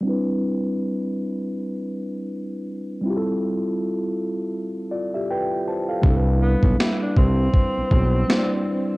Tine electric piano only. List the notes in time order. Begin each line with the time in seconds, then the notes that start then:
0.01 G3 C4
0.05 D4 E4
0.09 B4
3.01 G3 C4
3.06 E4 F4
3.10 G4
3.17 A4
4.91 F4 D5
5.14 G4 E5
5.31 B4 G5
5.68 C5 A5
5.89 A4 F5
6.01 G3
6.06 D4 E4
6.10 A4
6.17 B4
8.27 G3 C4 D4 E4
8.32 C5
8.38 D5